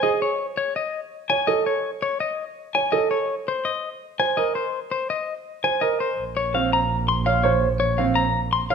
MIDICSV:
0, 0, Header, 1, 5, 480
1, 0, Start_track
1, 0, Key_signature, -5, "minor"
1, 0, Tempo, 361446
1, 531, Time_signature, 4, 2, 24, 8
1, 11616, End_track
2, 0, Start_track
2, 0, Title_t, "Celesta"
2, 0, Program_c, 0, 8
2, 9653, Note_on_c, 0, 89, 61
2, 9963, Note_off_c, 0, 89, 0
2, 11569, Note_on_c, 0, 89, 70
2, 11616, Note_off_c, 0, 89, 0
2, 11616, End_track
3, 0, Start_track
3, 0, Title_t, "Clean electric guitar"
3, 0, Program_c, 1, 27
3, 38, Note_on_c, 1, 75, 67
3, 287, Note_off_c, 1, 75, 0
3, 292, Note_on_c, 1, 73, 55
3, 603, Note_off_c, 1, 73, 0
3, 763, Note_on_c, 1, 73, 54
3, 1004, Note_off_c, 1, 73, 0
3, 1009, Note_on_c, 1, 75, 51
3, 1322, Note_off_c, 1, 75, 0
3, 1722, Note_on_c, 1, 80, 53
3, 1956, Note_on_c, 1, 75, 64
3, 2039, Note_off_c, 1, 80, 0
3, 2205, Note_off_c, 1, 75, 0
3, 2210, Note_on_c, 1, 73, 48
3, 2522, Note_off_c, 1, 73, 0
3, 2688, Note_on_c, 1, 73, 51
3, 2921, Note_off_c, 1, 73, 0
3, 2926, Note_on_c, 1, 75, 52
3, 3241, Note_off_c, 1, 75, 0
3, 3650, Note_on_c, 1, 80, 52
3, 3879, Note_on_c, 1, 75, 65
3, 3962, Note_off_c, 1, 80, 0
3, 4121, Note_off_c, 1, 75, 0
3, 4127, Note_on_c, 1, 73, 47
3, 4441, Note_off_c, 1, 73, 0
3, 4623, Note_on_c, 1, 72, 47
3, 4846, Note_on_c, 1, 75, 45
3, 4927, Note_off_c, 1, 72, 0
3, 5161, Note_off_c, 1, 75, 0
3, 5572, Note_on_c, 1, 80, 47
3, 5805, Note_on_c, 1, 75, 58
3, 5883, Note_off_c, 1, 80, 0
3, 6041, Note_off_c, 1, 75, 0
3, 6046, Note_on_c, 1, 72, 44
3, 6361, Note_off_c, 1, 72, 0
3, 6526, Note_on_c, 1, 72, 41
3, 6767, Note_off_c, 1, 72, 0
3, 6772, Note_on_c, 1, 75, 44
3, 7083, Note_off_c, 1, 75, 0
3, 7491, Note_on_c, 1, 80, 42
3, 7721, Note_on_c, 1, 75, 57
3, 7803, Note_off_c, 1, 80, 0
3, 7967, Note_off_c, 1, 75, 0
3, 7973, Note_on_c, 1, 72, 43
3, 8283, Note_off_c, 1, 72, 0
3, 8454, Note_on_c, 1, 73, 45
3, 8692, Note_on_c, 1, 77, 46
3, 8764, Note_off_c, 1, 73, 0
3, 8935, Note_off_c, 1, 77, 0
3, 8940, Note_on_c, 1, 82, 65
3, 9246, Note_off_c, 1, 82, 0
3, 9408, Note_on_c, 1, 84, 51
3, 9641, Note_on_c, 1, 77, 64
3, 9722, Note_off_c, 1, 84, 0
3, 9873, Note_on_c, 1, 73, 56
3, 9959, Note_off_c, 1, 77, 0
3, 10197, Note_off_c, 1, 73, 0
3, 10355, Note_on_c, 1, 73, 56
3, 10598, Note_on_c, 1, 77, 53
3, 10677, Note_off_c, 1, 73, 0
3, 10829, Note_on_c, 1, 82, 68
3, 10918, Note_off_c, 1, 77, 0
3, 11155, Note_off_c, 1, 82, 0
3, 11323, Note_on_c, 1, 84, 57
3, 11559, Note_on_c, 1, 77, 77
3, 11616, Note_off_c, 1, 77, 0
3, 11616, Note_off_c, 1, 84, 0
3, 11616, End_track
4, 0, Start_track
4, 0, Title_t, "Grand piano"
4, 0, Program_c, 2, 0
4, 42, Note_on_c, 2, 68, 64
4, 360, Note_off_c, 2, 68, 0
4, 1727, Note_on_c, 2, 73, 57
4, 1967, Note_on_c, 2, 69, 58
4, 2041, Note_off_c, 2, 73, 0
4, 2281, Note_off_c, 2, 69, 0
4, 3652, Note_on_c, 2, 73, 50
4, 3891, Note_on_c, 2, 69, 58
4, 3963, Note_off_c, 2, 73, 0
4, 4203, Note_off_c, 2, 69, 0
4, 5570, Note_on_c, 2, 72, 47
4, 5810, Note_on_c, 2, 70, 49
4, 5882, Note_off_c, 2, 72, 0
4, 6122, Note_off_c, 2, 70, 0
4, 7487, Note_on_c, 2, 72, 41
4, 7724, Note_on_c, 2, 70, 50
4, 7801, Note_off_c, 2, 72, 0
4, 8040, Note_off_c, 2, 70, 0
4, 8685, Note_on_c, 2, 60, 48
4, 9001, Note_off_c, 2, 60, 0
4, 9642, Note_on_c, 2, 73, 52
4, 9890, Note_on_c, 2, 72, 63
4, 9960, Note_off_c, 2, 73, 0
4, 10202, Note_off_c, 2, 72, 0
4, 10606, Note_on_c, 2, 60, 53
4, 10921, Note_off_c, 2, 60, 0
4, 11561, Note_on_c, 2, 73, 52
4, 11616, Note_off_c, 2, 73, 0
4, 11616, End_track
5, 0, Start_track
5, 0, Title_t, "Double bass"
5, 0, Program_c, 3, 43
5, 8203, Note_on_c, 3, 34, 51
5, 11616, Note_off_c, 3, 34, 0
5, 11616, End_track
0, 0, End_of_file